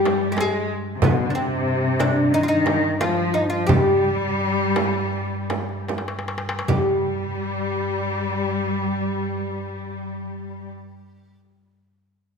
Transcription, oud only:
0.00 0.31 G4 loud
0.32 0.38 G4 medium
0.40 0.69 G#4 loud
1.04 1.29 B3 medium
1.30 1.35 D4 medium
1.35 2.00 C4 medium
2.00 2.34 D4 medium
2.34 2.41 D#4 loud
2.43 2.48 F4 medium
2.48 3.00 D#4 loud
3.01 3.32 F4 medium
3.34 3.49 D#4 medium
3.50 3.66 F4 loud
3.67 5.84 G4 loud
6.68 11.39 G4 medium

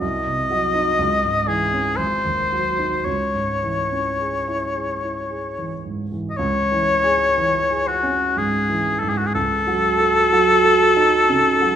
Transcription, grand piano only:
0.02 0.97 C2 medium
0.26 0.66 C3 soft
0.50 0.90 F#3 soft
0.74 0.99 D#4 soft
0.99 1.95 C#2 medium
1.24 1.63 G#2 soft
1.48 1.88 E3 soft
1.73 1.99 C#4 soft
1.99 3.03 G#1 soft
2.25 2.67 D#2 soft
2.52 2.96 F#3 soft
2.79 3.06 D#4 soft
3.06 6.34 C#2 soft
3.34 3.80 G#2 soft
3.63 4.08 E3 soft
3.92 4.36 C#4 soft
4.20 4.64 G#4 soft
4.48 4.91 E4 soft
4.75 5.18 G#4 soft
5.02 5.46 E4 soft
5.30 5.74 G#4 soft
5.58 6.02 E3 soft
5.85 6.28 G#2 soft
6.12 6.38 E3 soft
6.39 9.32 C#2 medium
6.72 7.24 E3 soft
7.04 7.57 G#4 medium
7.37 7.90 E3 soft
7.70 8.23 G#4 medium
8.03 8.56 C#4 soft
8.36 8.89 G#2 soft
8.70 9.22 E3 soft
9.02 9.35 G#2 soft
9.35 11.76 C#2 medium
9.67 10.20 F#3 soft
10.00 10.52 A4 soft
10.33 10.84 F#3 soft
10.65 11.16 A4 medium
10.97 11.49 D#4 soft
11.29 11.76 C#3 medium
11.61 11.76 F#3 soft

